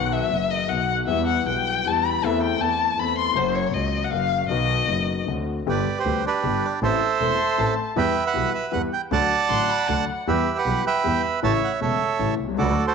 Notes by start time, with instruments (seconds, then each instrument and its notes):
Already playing: double bass B1, grand piano B1 B2 D#3 F#3 B3 F#4, violin F#5
0.13 violin E5
0.29 double bass F#1, grand piano F#1 F#2 D#3 F#3 B3
0.33 grand piano F#4
0.51 violin D#5
0.68 double bass B1, grand piano B1 B2 D#3 F#3 B3, violin F#5
0.72 grand piano F#4
1.07 grand piano E2 E3 G3 B3 G4, double bass E2, violin E5
1.27 violin F#5
1.45 double bass B1, grand piano B1 B2 E3 G3 B3 G4, violin G5
1.85 double bass E2, grand piano E2 E3 G3 B3 G4, violin A5
2.05 violin B5
2.22 double bass E2, grand piano E2 E3 A3 C4, violin E5
2.26 grand piano A4
2.43 violin G5
2.59 double bass E2, grand piano E2 E3 A3 C4 A4, violin A5
2.97 double bass E2, grand piano E2 E3 A3 C4, violin B5
3.02 grand piano A4
3.18 violin C6
3.33 double bass F#1, grand piano F#2 C#3 F#3 A#3, violin C5
3.38 grand piano F#4
3.55 violin C#5
3.72 double bass C#2, grand piano C#2 C#3 F#3 A#3, violin D#5
3.76 grand piano F#4
4.04 violin F#5
4.10 double bass F#1, grand piano F#2 C#3 F#3 A#3, violin F5
4.15 grand piano F#4
4.49 double bass B1, grand piano B1 B2 D#3 F#3 B3 F#4, violin D#5
4.87 double bass F#1, grand piano F#1 F#2 D#3 F#3 B3
4.91 grand piano F#4
5.26 double bass D2, grand piano D2 D3 A3 C4 F#4
5.66 double bass G1, grand piano G1 G2 D3 G3 B3 G4, bandoneon G4 B4
5.70 bandoneon D5
5.99 bandoneon G4 C5
6.05 double bass D2, grand piano D2 D3 G3 B3 G4
6.26 bandoneon D4 G4 B4
6.43 grand piano G1 G2 D3 G3 B3 G4, double bass G1
6.65 bandoneon D5
6.83 grand piano A1 A2 E3 A3 C4 A4, double bass A1, bandoneon A4 C5 E5
7.20 grand piano E1 E2 E3 A3 C4 A4, double bass E1, violin C6
7.58 grand piano A1 A2 E3 A3 C4 A4, double bass A1, violin A5
7.96 grand piano E2 E3 G3 B3 G4, double bass E2, bandoneon B4 E5 G5
8.26 bandoneon B4 F#5
8.34 grand piano B1 B2 E3 G3 B3 G4, double bass B1
8.54 bandoneon E5
8.72 grand piano E2 E3 G3 B3 G4, double bass E2, bandoneon F#5
8.93 bandoneon G5
9.11 grand piano D2 D3 F#3 A3 F#4, double bass D2, bandoneon D5 F#5 A5
9.49 grand piano A1 A2 D3 F#3 A3 F#4, double bass A1, violin C6
9.70 violin B5
9.89 double bass D2, grand piano D2 D3 F#3 A3 F#4, violin F#5
10.27 grand piano E2 E3 G3 B3 G4, double bass E2, bandoneon G4 B4 E5
10.58 bandoneon B4 F#5
10.66 double bass B1, grand piano B1 B2 E3 G3 B3 G4
10.87 bandoneon B4 E5 G5
11.04 grand piano E2 E3 G3 B3 G4, double bass E2
11.42 grand piano A1 A2 C#3 E3 A3 E4, double bass A1, bandoneon C#5 E5 A5
11.64 bandoneon F#5
11.81 grand piano E1 E2 C#3 E3 A3 E4, double bass E1, bandoneon A4 C#5 E5
12.19 grand piano A1 A2 C#3 E3 A3 E4, double bass A1
12.40 double bass C2
12.44 grand piano B1
12.48 grand piano C2
12.54 grand piano C#2, double bass D2
12.58 grand piano D2 D3 F#3 A3 F#4, bandoneon F#4 A4 D5
12.87 bandoneon F#4 A4 C5